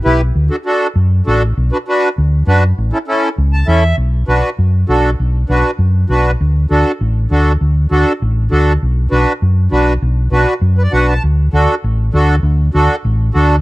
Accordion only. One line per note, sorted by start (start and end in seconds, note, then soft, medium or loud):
0.04 0.21 E4 medium
0.04 0.21 G4 medium
0.04 0.21 B4 medium
0.50 0.56 D4 medium
0.50 0.56 F#4 medium
0.50 0.56 A4 medium
0.66 0.87 D4 medium
0.66 0.87 F#4 medium
0.66 0.87 A4 medium
1.26 1.42 D4 medium
1.26 1.43 F#4 medium
1.26 1.43 A4 medium
1.72 1.77 D4 medium
1.72 1.78 F#4 medium
1.72 1.77 B4 medium
1.88 2.09 D4 medium
1.88 2.09 F#4 medium
1.88 2.09 B4 medium
2.48 2.63 D4 medium
2.48 2.64 F#4 medium
2.48 2.64 B4 medium
2.93 2.98 C#4 medium
2.93 2.98 E4 medium
2.93 2.98 A4 medium
3.08 3.29 C#4 medium
3.08 3.29 E4 medium
3.08 3.29 A4 medium
3.53 3.67 A5 medium
3.67 3.84 C#4 medium
3.67 3.84 E4 medium
3.67 3.84 A4 medium
3.67 3.96 E5 medium
4.28 4.49 D4 medium
4.28 4.50 F#4 medium
4.28 4.50 B4 medium
4.89 5.10 D4 medium
4.89 5.10 F#4 medium
4.89 5.10 A4 medium
5.49 5.71 D4 medium
5.49 5.71 F#4 medium
5.49 5.71 B4 medium
6.10 6.31 D4 medium
6.10 6.31 F#4 medium
6.10 6.31 B4 medium
6.71 6.92 D4 medium
6.71 6.92 F#4 medium
6.71 6.92 A4 medium
7.31 7.52 D4 medium
7.31 7.52 F#4 medium
7.31 7.53 A4 medium
7.91 8.12 D4 medium
7.91 8.13 F#4 medium
7.91 8.13 A4 medium
8.51 8.73 D4 medium
8.51 8.73 F#4 medium
8.51 8.73 A4 medium
9.11 9.33 D4 medium
9.11 9.33 F#4 medium
9.11 9.33 B4 medium
9.71 9.93 D4 medium
9.71 9.93 F#4 medium
9.71 9.93 B4 medium
10.32 10.54 D4 medium
10.32 10.54 F#4 medium
10.32 10.54 B4 loud
10.78 10.83 B4 medium
10.83 10.92 D5 medium
10.92 11.14 D4 medium
10.92 11.14 F#4 medium
10.92 11.14 B4 medium
10.92 11.07 F#5 medium
11.09 11.23 A5 medium
11.53 11.75 D4 medium
11.53 11.75 F#4 medium
11.53 11.75 A4 medium
12.14 12.35 D4 medium
12.14 12.36 F#4 medium
12.14 12.36 A4 medium
12.74 12.95 D4 medium
12.74 12.96 F#4 medium
12.74 12.96 A4 medium
13.34 13.56 D4 medium
13.34 13.56 F#4 medium
13.34 13.56 A4 medium